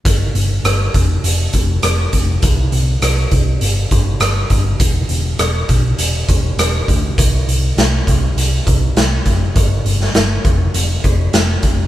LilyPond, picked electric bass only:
\new Staff \with { instrumentName = "Picked electric bass" } { \clef bass \time 4/4 \key e \phrygian \tempo 4 = 101 g,,8 g,,8 g,,8 f,,8 f,,8 f,,8 f,,8 f,,8 | c,8 c,8 c,8 c,8 g,,8 g,,8 g,,8 g,,8 | e,,8 e,,8 e,,8 b,,8 e,,8 e,,8 e,,8 d,8 | c,8 c,8 c,8 c,8 c,8 c,8 c,8 fis,,8 |
g,,8 g,,8 g,,8 f,,8 f,,8 f,,8 f,,8 f,,8 | }